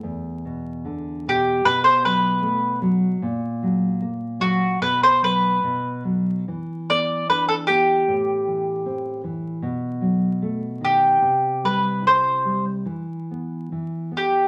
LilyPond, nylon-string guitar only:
\new Staff \with { instrumentName = "Nylon-string guitar" } { \clef bass \time 2/4 \key e \minor \tempo 4 = 75 e,8 b,8 d8 b,8 | b,8 fis8 a8 fis8 | ais,8 fis8 ais8 fis8 | b,8 fis8 b,8 fis8 |
e8 b8 d'8 b8 | a,8 e8 c'8 e8 | b,8 fis8 a8 dis8 | c8 g8 e'8 g8 |
e8 b8 e8 b8 | }